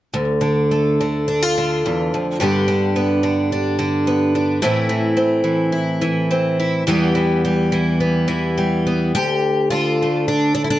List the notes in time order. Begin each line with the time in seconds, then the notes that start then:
0.14 D2
0.41 D3
0.71 A3
1.01 D3
1.28 D4
1.43 F4
1.58 D3
1.86 E2
2.14 F2
2.40 G2 D3 B3 D4 G4
2.68 D3
2.96 B3
3.23 D3
3.52 D4
3.79 D3
4.07 B3
4.35 D4
4.62 A2 E3 C4 E4
4.89 E3
5.17 C4
5.44 E3
5.72 E4
6.01 E3
6.31 C4
6.60 E4
6.87 E2 E3 G3 B3 G4
7.15 E3
7.45 G3
7.72 E3
8.00 B3
8.28 E3
8.58 G3
8.87 B3
9.15 D2 G4
9.70 D3 F4
10.02 A3
10.28 D4
10.55 D4
10.64 E4
10.70 D4